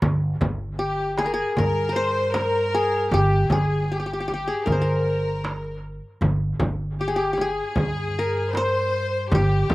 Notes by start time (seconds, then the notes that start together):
0.02 G1, frame drum, darbuka dum
0.41 G1, darbuka dum, frame drum
0.79 G4
1.00 darbuka ka
1.18 G#4, darbuka tek, frame drum
1.26 A#4
1.33 G#4
1.56 G2 A#4, darbuka dum, frame drum
1.89 A#4
1.95 C5
2.33 A#4, darbuka tek, frame drum
2.54 darbuka ka
2.75 G#4
3.11 G1 G4, frame drum, darbuka dum
3.50 G1 G#4, frame drum, darbuka dum
3.89 G4
4.00 G4
4.06 G4, darbuka ka
4.13 G4
4.20 G4
4.28 G4, frame drum
4.34 G4
4.48 G#4
4.65 G1 A#4, frame drum, darbuka dum
4.72 C5
4.79 A#4
5.44 darbuka tek, frame drum
5.65 darbuka ka
6.21 G1, frame drum, darbuka dum
6.60 G1, frame drum, darbuka dum
7.00 G4
7.08 G#4
7.13 G4
7.33 G4 G#4
7.38 G#4, frame drum
7.76 G2, frame drum, darbuka dum
7.96 darbuka ka
8.19 A#4
8.53 C5, darbuka tek, frame drum
8.74 darbuka ka
9.32 G1 G4, frame drum, darbuka dum
9.52 darbuka ka
9.70 G1, frame drum